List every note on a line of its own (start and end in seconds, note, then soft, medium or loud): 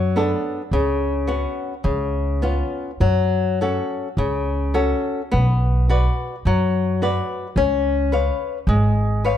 0.00 0.32 F#2 medium
0.00 0.15 F#3 medium
0.16 0.61 B3 soft
0.16 0.61 D4 soft
0.16 0.61 A4 soft
0.71 1.44 C#2 medium
0.71 1.26 C#3 medium
1.27 1.73 B3 soft
1.27 1.73 C#4 soft
1.27 1.73 F#4 soft
1.84 2.61 C#2 medium
1.84 2.41 C#3 soft
2.42 2.90 B3 soft
2.42 2.90 C#4 soft
2.42 2.90 F4 soft
3.00 3.77 F#2 medium
3.00 3.58 F#3 medium
3.61 4.07 C#4 soft
3.61 4.07 F#4 soft
3.61 4.08 A4 soft
4.17 4.92 C#2 medium
4.17 4.74 C#3 medium
4.74 5.21 C#4 soft
4.74 5.21 F#4 soft
4.74 5.21 A4 soft
5.32 6.06 B1 medium
5.32 5.87 B3 medium
5.89 6.34 F#4 soft
5.89 6.35 B4 soft
5.89 6.35 D5 soft
6.45 7.18 F#2 medium
6.45 7.00 F#3 medium
7.02 7.46 F#4 soft
7.02 7.47 B4 soft
7.02 7.46 D5 soft
7.56 8.29 C#2 medium
7.56 8.11 C#4 medium
8.12 8.57 B4 soft
8.12 8.57 C#5 soft
8.12 8.58 F5 soft
8.67 9.37 G#1 medium
8.67 9.23 G#3 medium
9.25 9.37 B4 soft
9.25 9.37 C#5 soft
9.25 9.37 F5 soft